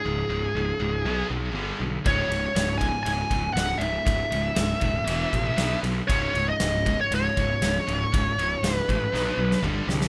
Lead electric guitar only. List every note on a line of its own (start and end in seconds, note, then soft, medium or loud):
0.00 1.25 G#4 medium
2.07 2.84 C#5 medium
2.78 3.02 G#5 loud
3.03 3.53 G#5 loud
3.53 3.82 F#5 medium
3.78 5.78 E5 medium
6.08 6.48 C#5 loud
6.49 7.00 D#5 loud
7.01 7.13 C#5 medium
7.15 8.73 C#5 medium
8.73 9.62 B4 medium